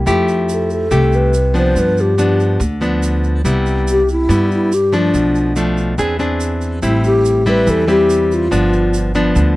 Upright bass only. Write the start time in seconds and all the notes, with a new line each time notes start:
0.07 F2
0.91 C2
1.75 G2
2.60 D2
3.44 C2
4.29 G2
5.14 B1
5.98 E2
6.83 A1
7.67 E2
8.52 G1
9.36 D2